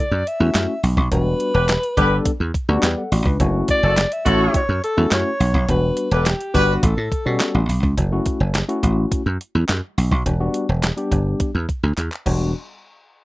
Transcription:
Already playing: alto saxophone D5
0.11 slap bass F#2
0.27 alto saxophone E5, closed hi-hat
0.40 slap bass E2, tine electric piano A3 C#4 E4 F#4
0.55 slap bass F#2, snare, clap, closed hi-hat
0.83 slap bass B1, open hi-hat
0.97 slap bass B1, kick
1.11 slap bass E1, tine electric piano G3 B3 D4 F#4, alto saxophone B4, kick, closed hi-hat
1.40 closed hi-hat
1.54 slap bass E1, horn section B3 G4 B4
1.69 snare, clap, closed hi-hat
1.83 closed hi-hat
1.97 slap bass G1, tine electric piano G3 B3 D4 A4, horn section B3 G4 B4, kick, closed hi-hat
2.25 muted slap bass stroke, kick, closed hi-hat
2.40 slap bass E2
2.54 kick, closed hi-hat
2.69 slap bass D2, tine electric piano G3 B3 D4 F#4
2.83 slap bass E2, tine electric piano B4 G5, snare, clap, closed hi-hat
2.98 tine electric piano A4 F#5
3.12 slap bass A1, tine electric piano F#4 D5, open hi-hat
3.26 slap bass C#2, tine electric piano D4 B4, kick
3.40 slap bass F#1, tine electric piano A3 C#4 E4 F#4, kick, closed hi-hat
3.68 alto saxophone D5, kick, closed hi-hat
3.83 slap bass F#1, horn section E4 F#4 A4
3.97 snare, clap, closed hi-hat
4.12 alto saxophone E5, closed hi-hat
4.25 slap bass A1, tine electric piano A3 C#4 E4 F#4, horn section E4 F#4 A4, alto saxophone C#5, kick, closed hi-hat
4.54 alto saxophone C#5, muted slap bass stroke, kick, closed hi-hat
4.69 slap bass F#2
4.84 alto saxophone A4, closed hi-hat
4.97 slap bass E2, tine electric piano A3 C#4 E4 F#4
5.11 slap bass F#2, alto saxophone C#5, snare, clap, closed hi-hat
5.40 slap bass B1, open hi-hat
5.54 slap bass B1, kick
5.68 slap bass E1, tine electric piano G3 B3 D4 F#4, alto saxophone B4, kick, closed hi-hat
5.97 closed hi-hat
6.11 slap bass E1, horn section B3 G4 B4, alto saxophone A4, closed hi-hat
6.26 alto saxophone G4, snare, clap, closed hi-hat
6.41 closed hi-hat
6.54 slap bass G1, tine electric piano G3 B3 D4 F#4, horn section B3 G4 B4, kick, open hi-hat
6.70 alto saxophone F#4
6.83 slap bass A1, alto saxophone A4, kick, closed hi-hat
6.97 slap bass A2
7.12 kick, closed hi-hat
7.25 slap bass B2, tine electric piano G3 B3 C#4 F#4
7.40 snare, clap, closed hi-hat
7.55 slap bass A1
7.69 slap bass B1, open hi-hat
7.83 slap bass C#2, kick
7.97 slap bass F#1, tine electric piano E4 F#4, kick, closed hi-hat
8.12 tine electric piano A3 C#4 E4 F#4
8.26 kick, closed hi-hat
8.40 slap bass F#1
8.55 snare, clap, closed hi-hat
8.68 tine electric piano A3 C#4 E4 F#4, closed hi-hat
8.83 slap bass A1, kick, closed hi-hat
9.12 muted slap bass stroke, kick, closed hi-hat
9.26 slap bass F#2
9.41 closed hi-hat
9.55 slap bass E2
9.69 slap bass F#2, snare, clap, closed hi-hat
9.98 slap bass B1, open hi-hat
10.12 slap bass B1, kick
10.26 slap bass E1, tine electric piano D4 F#4, kick, closed hi-hat
10.40 tine electric piano G3 B3 D4 F#4
10.54 closed hi-hat
10.69 slap bass E1
10.83 snare, clap, closed hi-hat
10.97 tine electric piano G3 B3 D4 G4, closed hi-hat
11.12 slap bass G1, kick, closed hi-hat
11.40 kick, closed hi-hat
11.55 slap bass E2
11.69 kick, closed hi-hat
11.83 slap bass D2
11.98 slap bass E2, clap, closed hi-hat
12.12 clap
12.26 slap bass E1, tine electric piano G3 B3 D4 F#4, kick, crash

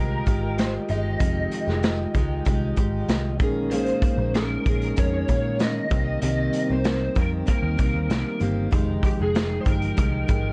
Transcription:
Already playing: picked electric bass C2, steel-string acoustic guitar D#3 G#3 D#4 G4, tonewheel organ G#3 F4 D#5 G5, electric slide guitar A#4
0.26 picked electric bass G#1, steel-string acoustic guitar D#3 G#3 D#4 G4, kick, closed hi-hat
0.58 electric slide guitar C5, snare, closed hi-hat
0.88 picked electric bass G1, steel-string acoustic guitar D#3 G#3 D#4 G4, electric slide guitar D#5, closed hi-hat
1.19 picked electric bass F1, steel-string acoustic guitar F2 C3 D#3 G#3 D#4 G4, kick, closed hi-hat
1.51 closed hi-hat
1.66 picked electric bass F1, steel-string acoustic guitar D#3 G#3 D#4 G4, snare
1.83 snare, closed hi-hat
2.14 picked electric bass C#2, steel-string acoustic guitar D#3 G#3 D#4 G4, kick, closed hi-hat
2.45 picked electric bass C2, steel-string acoustic guitar D#3 G#3 D#4 G4, kick, closed hi-hat
2.76 picked electric bass G#1, steel-string acoustic guitar D#3 G#3 D#4 G4, kick, closed hi-hat
3.09 picked electric bass C2, snare, closed hi-hat
3.37 picked electric bass A#1, steel-string acoustic guitar D#3 A#3, tonewheel organ G#3 C#4 D#4, kick, closed hi-hat
3.42 steel-string acoustic guitar C#4 G#4, tonewheel organ A#4
3.71 steel-string acoustic guitar A#2 D#3 A#3 C#4 G#4, electric slide guitar C5, closed hi-hat
3.86 closed hi-hat
4.02 kick, closed hi-hat
4.18 picked electric bass A#1, steel-string acoustic guitar A#3 C#4 G#4
4.34 electric slide guitar A#4, snare, closed hi-hat
4.65 picked electric bass A#1, steel-string acoustic guitar D#3 A#3 C#4 G#4, kick, closed hi-hat
4.81 closed hi-hat
4.96 picked electric bass F2, steel-string acoustic guitar D#3 A#3 C#4 G#4, electric slide guitar C#5, kick, closed hi-hat
5.28 picked electric bass A#2, steel-string acoustic guitar D#3 A#3 C#4 G#4, kick, closed hi-hat
5.59 electric slide guitar D#5, snare, closed hi-hat
5.89 picked electric bass C2, steel-string acoustic guitar D#3 A#3 C4 G4, tonewheel organ G3 C4 D#4, kick, closed hi-hat
5.94 tonewheel organ A#4
6.22 picked electric bass C2, steel-string acoustic guitar C3 D#3 A#3 C4 G4, electric slide guitar D#5, closed hi-hat
6.53 closed hi-hat
6.69 picked electric bass C2, steel-string acoustic guitar A#3 C4 G4, electric slide guitar C5
6.84 snare, closed hi-hat
7.15 picked electric bass F2, steel-string acoustic guitar D#3 A#3 C4 G4, kick, closed hi-hat
7.20 electric slide guitar A#4
7.46 steel-string acoustic guitar D#3 A#3 C4 G4, kick, closed hi-hat
7.50 electric slide guitar A#4
7.63 picked electric bass D#2
7.77 picked electric bass C2, steel-string acoustic guitar D#3 A#3 C4 G4, kick, closed hi-hat
7.94 picked electric bass D#2
8.10 picked electric bass C2, snare, closed hi-hat
8.40 picked electric bass G1, steel-string acoustic guitar D#3 A#3 C4 G4, closed hi-hat
8.70 picked electric bass F1, steel-string acoustic guitar F2 C3 D#3 G#3 D#4 G4, tonewheel organ F3 G3 D#4, kick, closed hi-hat
8.75 tonewheel organ G#3 G5
9.03 electric slide guitar G4, kick, closed hi-hat
9.19 picked electric bass F1, steel-string acoustic guitar D#3 G#3 D#4
9.23 electric slide guitar G#4
9.35 snare, closed hi-hat
9.61 electric slide guitar C5
9.65 picked electric bass G1, steel-string acoustic guitar D#3 G#3 D#4 G4, electric slide guitar A#4, kick, closed hi-hat
9.82 closed hi-hat
9.96 picked electric bass C2, steel-string acoustic guitar D#3 G#3 D#4 G4, kick, closed hi-hat
10.27 picked electric bass G#1, steel-string acoustic guitar D#3 G#3 D#4 G4, kick, closed hi-hat

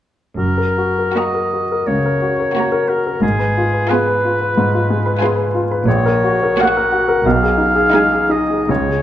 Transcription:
0.37 double bass section F#1, grand piano F#2, cello section F#2, oboe A#4
0.58 grand piano A#4
0.78 grand piano F#4
0.98 grand piano A#4
1.16 viola section A#3, violin section F#4 A#5, grand piano F#4, oboe D#5
1.34 grand piano A#4
1.53 grand piano F#4
1.72 grand piano A#4
1.87 cello section C#2, grand piano C#3, oboe C#5
2.06 grand piano A#4
2.22 grand piano F#4
2.39 grand piano A#4
2.55 viola section A#3, violin section F#4 A#5, grand piano F#4
2.72 grand piano A#4
2.88 grand piano F#4, oboe A#4
3.07 grand piano A#4
3.22 double bass section G#1, grand piano G#2, cello section G#2, oboe G#4
3.39 grand piano B4
3.57 grand piano F4
3.73 grand piano B4
3.89 viola section B3, violin section F4 G#5, grand piano G#4, oboe B4
4.07 grand piano B4
4.25 grand piano F4
4.41 grand piano B4
4.57 cello section G#2, grand piano G#2
4.74 grand piano F4
4.90 grand piano G#3
5.06 grand piano B4
5.20 viola section B3, violin section F4 G#5, grand piano G#4
5.36 grand piano B4
5.55 grand piano F4
5.71 grand piano B4
5.86 double bass section A#1, grand piano A#1, cello section A#2, oboe C#5
6.06 grand piano A#4
6.24 grand piano F#4
6.43 grand piano A#4
6.59 viola section A#3, violin section F#4 F#5, grand piano F#4, oboe F#5
6.77 grand piano A#4
6.92 grand piano F#4
7.08 grand piano A#4
7.26 grand piano B1, double bass section B1, cello section B2, oboe F5
7.43 grand piano G#4
7.58 grand piano D#4
7.75 grand piano G#4
7.92 viola section G#3, violin section D#4 G#5, grand piano D#4
8.12 grand piano G#4
8.29 grand piano D#4, oboe D#5
8.50 grand piano G#4
8.69 grand piano C#2, double bass section C#2, cello section C#3, oboe C#5
8.89 grand piano G#4

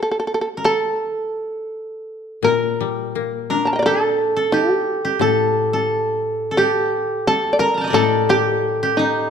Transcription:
Already playing: koto A4
0.03 shamisen A4
0.11 shamisen A4
0.20 shamisen A4
0.27 shamisen A4
0.34 shamisen A4
0.41 shamisen A4
0.57 koto A#4
0.64 koto A4, shamisen A4
2.43 koto A#2 A#4, shamisen A#4
2.80 koto G3
3.15 koto A#3
3.50 koto D4 A#4
3.65 shamisen A5 A#5
3.73 shamisen D#5 G5
3.79 shamisen A#4 D5
3.86 shamisen A4, koto A4
4.36 koto A4
4.52 shamisen G4, koto G4
5.05 koto G4
5.19 koto A2 A4, shamisen A4
5.73 koto A4
6.51 koto A4
6.57 shamisen G4, koto G4
7.27 shamisen A4, koto A4
7.53 shamisen D5
7.59 shamisen A#4, koto A#4
7.74 koto A5 A#5
7.81 koto D#5 G5
7.87 koto A#4 D5
7.93 koto A2 A4, shamisen A4
8.29 koto G4, shamisen G4
8.83 koto G4
8.97 shamisen D#4, koto D#4

